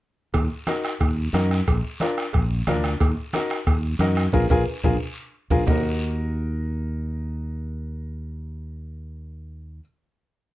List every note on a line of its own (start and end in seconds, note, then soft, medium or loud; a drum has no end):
0.34 0.48 D#2 loud
0.34 bombo low medium
0.34 bombo rim medium
0.34 cowbell loud
0.34 high conga soft
0.34 long guiro medium
0.67 0.91 D#4 medium
0.67 0.91 F#4 medium
0.67 0.91 A#4 medium
0.67 bombo rim medium
0.67 cowbell medium
0.67 high conga medium
0.67 short guiro medium
0.84 bombo rim medium
0.84 short guiro medium
1.00 1.27 D#2 medium
1.00 bombo low medium
1.00 bombo rim medium
1.00 cowbell medium
1.00 high conga soft
1.00 long guiro medium
1.33 1.60 F#2 loud
1.33 1.57 D#4 medium
1.33 1.57 F#4 medium
1.33 1.58 A#4 medium
1.33 bombo rim medium
1.33 cowbell medium
1.33 high conga medium
1.33 short guiro medium
1.51 bombo rim medium
1.51 short guiro medium
1.67 1.81 A#1 loud
1.67 bombo low medium
1.67 bombo rim medium
1.67 cowbell loud
1.67 high conga soft
1.67 long guiro medium
2.00 2.24 D4 medium
2.00 2.24 F4 medium
2.00 2.25 A#4 medium
2.00 bombo rim medium
2.00 cowbell medium
2.00 high conga medium
2.00 short guiro medium
2.18 bombo rim medium
2.18 short guiro medium
2.33 2.61 A#1 medium
2.33 bombo low medium
2.33 bombo rim medium
2.33 cowbell medium
2.33 high conga soft
2.33 long guiro medium
2.67 2.94 D2 loud
2.67 2.91 D4 medium
2.67 2.91 F4 medium
2.67 2.91 A#4 medium
2.67 bombo rim medium
2.67 cowbell medium
2.67 high conga medium
2.67 low conga medium
2.67 short guiro medium
2.84 bombo rim medium
2.84 short guiro medium
3.00 3.14 D#2 loud
3.00 bombo low medium
3.00 bombo rim medium
3.00 cowbell loud
3.00 high conga soft
3.00 long guiro medium
3.33 3.57 D#4 medium
3.33 3.57 F#4 medium
3.33 3.58 A#4 medium
3.33 bombo rim medium
3.33 cowbell medium
3.33 high conga medium
3.33 short guiro medium
3.49 bombo rim medium
3.49 short guiro medium
3.67 3.94 D#2 medium
3.67 bombo low medium
3.67 bombo rim medium
3.67 cowbell medium
3.67 high conga soft
3.67 long guiro medium
3.99 4.26 F#2 medium
3.99 4.24 D#4 medium
3.99 4.24 F#4 medium
3.99 4.24 A#4 medium
3.99 bombo rim medium
3.99 cowbell medium
3.99 high conga medium
3.99 short guiro medium
4.15 bombo rim medium
4.15 short guiro medium
4.32 4.46 A#1 loud
4.32 4.44 F4 medium
4.32 4.44 G#4 medium
4.32 4.44 A#4 medium
4.32 bombo low medium
4.32 low conga medium
4.32 high timbale loud
4.32 long guiro medium
4.49 4.63 A#1 medium
4.49 4.61 F4 loud
4.49 4.62 G#4 loud
4.49 4.61 A#4 loud
4.49 bombo low medium
4.49 low conga medium
4.49 high timbale loud
4.49 long guiro loud
4.83 4.96 A#1 medium
4.83 4.95 F4 medium
4.83 4.95 G#4 medium
4.83 4.95 A#4 medium
4.83 bombo low loud
4.83 low conga loud
4.83 high timbale medium
4.83 long guiro medium
5.50 5.63 A#1 medium
5.50 5.62 F4 loud
5.50 5.62 G#4 medium
5.50 5.61 A#4 medium
5.50 bombo low medium
5.50 low conga medium
5.50 high timbale loud
5.50 long guiro loud
5.66 9.79 D#2 loud
5.66 9.79 D#4 medium
5.66 9.80 F#4 medium
5.66 bombo low loud
5.66 low conga loud
5.66 low timbale loud
5.66 long guiro loud
5.70 9.81 A#4 medium